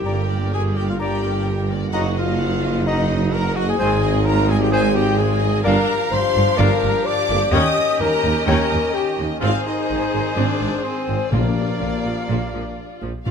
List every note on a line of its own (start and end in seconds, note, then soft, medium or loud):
0.00 0.50 G4 loud
0.00 0.51 G4 medium
0.00 0.52 G5 medium
0.04 1.94 G1 medium
0.04 1.89 G1 medium
0.04 1.89 G2 medium
0.04 0.23 D3 medium
0.04 0.28 G3 medium
0.04 0.24 A#3 medium
0.04 0.28 G4 medium
0.04 0.27 A#4 medium
0.04 0.22 D5 medium
0.04 0.28 A#5 medium
0.29 0.53 A#3 medium
0.29 0.53 A#4 medium
0.29 0.53 D5 medium
0.51 0.76 G3 medium
0.51 0.77 G4 medium
0.51 0.75 G#4 loud
0.51 0.77 G#4 loud
0.51 0.76 A#4 medium
0.51 0.61 G#5 loud
0.74 1.00 A#3 medium
0.74 0.88 G4 loud
0.74 0.88 G4 medium
0.74 1.00 A#4 medium
0.74 0.99 D5 medium
0.74 0.88 G5 medium
0.87 0.99 F4 medium
0.87 1.00 F5 medium
0.98 1.17 D3 medium
0.98 1.22 G3 medium
0.98 1.17 A#3 medium
0.98 1.69 G4 loud
0.98 1.69 G4 medium
0.98 1.22 G4 medium
0.98 1.21 A#4 medium
0.98 1.17 D5 medium
0.98 1.69 G5 loud
0.98 1.21 A#5 medium
1.21 1.47 A#3 medium
1.21 1.47 A#4 medium
1.21 1.46 D5 medium
1.47 1.71 G3 medium
1.47 1.71 G4 medium
1.47 1.70 A#4 medium
1.71 1.94 A#3 medium
1.71 1.94 A#4 medium
1.71 1.93 D5 medium
1.92 3.79 F#1 medium
1.92 3.80 F#1 medium
1.92 3.80 F#2 medium
1.92 2.09 D#3 medium
1.92 2.15 F#3 medium
1.92 2.09 A#3 medium
1.92 2.15 D#4 medium
1.92 2.04 F#4 loud
1.92 2.16 F#4 loud
1.92 2.10 D#5 medium
1.92 2.14 F#5 medium
1.92 2.01 F#5 loud
1.92 2.15 A#5 medium
2.15 2.41 A#3 medium
2.15 2.85 F4 loud
2.15 2.88 F4 medium
2.15 2.41 F#4 medium
2.15 2.39 D#5 medium
2.15 2.85 F5 loud
2.38 2.64 F#3 medium
2.38 2.64 D#4 medium
2.38 2.62 F#5 medium
2.63 2.87 A#3 medium
2.63 2.87 F#4 medium
2.63 2.86 D#5 medium
2.86 3.03 D#3 medium
2.86 3.09 F#3 medium
2.86 3.03 A#3 medium
2.86 3.35 D#4 loud
2.86 3.09 D#4 medium
2.86 3.34 D#4 loud
2.86 3.32 D#5 loud
2.86 3.03 D#5 medium
2.86 3.08 F#5 medium
2.86 3.08 A#5 medium
3.10 3.34 A#3 medium
3.10 3.34 F#4 medium
3.10 3.33 D#5 medium
3.32 3.57 F#3 medium
3.32 3.57 D#4 medium
3.32 3.57 A#4 loud
3.32 3.56 F#5 medium
3.32 3.56 A#5 loud
3.55 3.80 A#3 medium
3.55 3.68 F#4 loud
3.55 3.61 F#4 loud
3.55 3.80 F#4 medium
3.55 3.79 D#5 medium
3.59 3.69 F#5 medium
3.68 4.25 G#4 loud
3.68 4.27 G#4 loud
3.68 4.26 G#5 loud
3.77 5.62 G#1 loud
3.77 5.62 G#1 medium
3.77 5.61 G#2 loud
3.77 4.01 G#3 medium
3.77 3.97 C4 loud
3.77 4.01 D#4 medium
3.77 4.00 C5 medium
3.77 3.96 C5 medium
3.77 4.02 G#5 medium
3.82 3.97 D#3 loud
4.01 4.26 C4 medium
4.01 4.26 G#4 medium
4.01 4.25 D#5 medium
4.24 4.49 G#3 medium
4.24 4.50 D#4 medium
4.24 4.48 A#4 loud
4.24 4.52 A#4 loud
4.24 4.48 C5 medium
4.24 4.49 A#5 loud
4.47 4.72 C4 medium
4.47 4.60 G#4 loud
4.47 4.72 G#4 medium
4.47 4.62 G#4 loud
4.47 4.72 D#5 medium
4.47 4.61 G#5 loud
4.59 4.71 G4 loud
4.59 4.73 G5 loud
4.70 4.90 D#3 medium
4.70 4.94 G#3 medium
4.70 4.94 D#4 medium
4.70 4.95 G#4 loud
4.70 4.82 G#4 loud
4.70 4.93 C5 medium
4.70 4.89 C5 loud
4.70 4.95 G#5 loud
4.70 4.96 G#5 loud
4.75 4.90 C4 medium
4.93 5.19 C4 medium
4.93 5.17 G4 loud
4.93 5.18 G4 loud
4.93 5.18 G#4 medium
4.93 5.18 D#5 medium
4.98 5.19 G5 loud
5.16 5.41 G#3 medium
5.16 5.42 D#4 medium
5.16 5.64 G#4 loud
5.16 5.63 G#4 loud
5.16 5.42 C5 medium
5.16 5.66 G#5 loud
5.41 5.65 C4 medium
5.41 5.65 G#4 medium
5.41 5.65 D#5 medium
5.64 5.75 G1 loud
5.64 5.74 G1 loud
5.64 5.72 G2 loud
5.64 7.50 F3 loud
5.64 7.49 D4 loud
5.64 5.87 D4 loud
5.64 9.38 G4 loud
5.64 6.14 A#4 loud
5.64 6.11 A#4 loud
5.64 5.81 D5 loud
5.64 7.49 F5 loud
5.64 5.87 F5 loud
5.64 6.12 A#5 loud
6.10 6.21 G1 medium
6.10 6.20 G1 medium
6.10 6.20 G2 medium
6.10 6.20 G3 medium
6.10 6.57 C5 loud
6.10 6.59 C5 loud
6.10 6.60 C6 loud
6.34 6.44 G1 medium
6.34 6.44 G2 medium
6.34 6.42 A#3 medium
6.57 6.68 G1 loud
6.57 6.66 G2 loud
6.57 6.80 D4 loud
6.57 7.05 A#4 loud
6.57 7.08 A#4 loud
6.57 6.75 D5 loud
6.57 6.80 F5 loud
6.57 7.07 A#5 loud
6.82 6.92 G1 medium
6.82 6.91 G1 medium
6.82 6.91 G2 medium
6.82 6.90 A#3 medium
7.06 7.53 D5 loud
7.06 7.54 D5 loud
7.06 7.52 D6 loud
7.28 7.39 G1 loud
7.28 7.38 G1 medium
7.28 7.36 G2 medium
7.28 7.38 A#3 loud
7.52 7.60 D#2 loud
7.52 7.62 D#2 loud
7.52 11.29 D#3 loud
7.52 7.75 C#4 loud
7.52 9.43 C#4 loud
7.52 7.69 C#5 loud
7.52 9.42 D#5 loud
7.52 7.99 D#5 loud
7.52 8.02 D#5 loud
7.52 7.75 G5 medium
7.52 8.00 D#6 loud
8.00 8.08 D#2 medium
8.00 8.10 D#2 medium
8.00 8.09 G3 medium
8.00 8.46 A#4 loud
8.00 8.47 A#5 loud
8.24 8.33 D#2 medium
8.24 8.32 D#2 medium
8.24 8.34 D#2 medium
8.24 8.33 A#3 medium
8.47 8.55 D#2 loud
8.47 8.57 D#2 loud
8.47 8.70 C#4 loud
8.47 8.96 A#4 loud
8.47 8.94 A#4 loud
8.47 8.64 C#5 loud
8.47 8.70 G5 loud
8.47 8.94 A#5 loud
8.71 8.79 D#2 medium
8.71 8.81 D#2 medium
8.71 8.80 D#2 medium
8.71 8.80 A#3 medium
8.93 9.18 G4 loud
8.93 9.19 G4 loud
8.93 9.19 G5 loud
9.19 9.27 D#2 medium
9.19 9.29 D#2 medium
9.19 9.27 A#3 medium
9.40 9.52 G#1 loud
9.40 9.51 G#1 loud
9.40 9.49 G#2 loud
9.40 9.64 C4 loud
9.40 11.29 C4 medium
9.40 9.52 F4 loud
9.40 9.53 F4 loud
9.40 11.29 G#4 loud
9.40 10.81 C5 loud
9.40 11.29 C5 loud
9.40 9.65 F5 loud
9.40 10.80 G#5 medium
9.66 10.35 D#4 medium
9.66 10.36 D#4 loud
9.66 10.36 D#5 medium
9.89 9.99 G#1 medium
9.89 9.98 G#1 medium
9.89 9.97 G#2 medium
9.89 9.98 D#3 medium
10.12 10.23 G#1 medium
10.12 10.22 G#1 medium
10.12 10.21 G#2 medium
10.12 10.20 G#3 medium
10.35 10.46 G#1 medium
10.35 10.44 G#1 medium
10.35 10.44 G#2 loud
10.35 10.59 C4 medium
10.35 10.83 D4 loud
10.35 10.85 D4 loud
10.35 10.85 D5 loud
10.60 10.69 G#1 medium
10.60 10.70 G#1 medium
10.60 10.68 G#2 medium
10.60 10.68 G#3 medium
10.83 11.32 C4 loud
10.83 11.31 C4 medium
10.83 11.32 C5 medium
10.83 11.31 C5 medium
10.83 11.35 G#5 medium
11.08 11.18 G#1 medium
11.08 11.16 G#1 medium
11.08 11.16 G#2 medium
11.08 11.16 G#3 medium
11.31 11.40 A#1 medium
11.31 11.42 A#1 medium
11.31 11.40 A#2 medium
11.31 12.01 A#2 loud
11.31 12.98 F3 medium
11.31 12.74 A#3 loud
11.31 11.54 A#3 medium
11.31 12.74 A#3 medium
11.31 13.01 D4 medium
11.31 13.01 F4 medium
11.31 12.74 A#4 medium
11.31 12.98 D5 medium
11.31 13.05 D5 medium
11.31 13.02 F5 medium
11.80 11.90 A#1 medium
11.80 11.89 A#1 medium
11.80 11.89 A#2 medium
11.80 11.88 D3 medium
12.05 12.14 A#1 medium
12.05 12.13 A#1 medium
12.05 12.13 A#2 medium
12.05 12.13 F3 medium
12.29 12.39 A#1 medium
12.29 12.38 A#1 medium
12.29 12.37 A#2 medium
12.29 12.51 A#3 medium
12.53 12.63 A#1 medium
12.53 12.62 A#1 medium
12.53 12.63 A#2 medium
12.53 12.61 F3 medium
13.02 13.11 A#1 medium
13.02 13.11 A#2 medium
13.02 13.10 F3 medium
13.24 13.31 A#1 medium
13.24 13.31 A#2 medium
13.24 13.31 C4 medium
13.24 13.31 D4 medium
13.24 13.31 F4 medium
13.24 13.31 D5 medium
13.24 13.31 F5 medium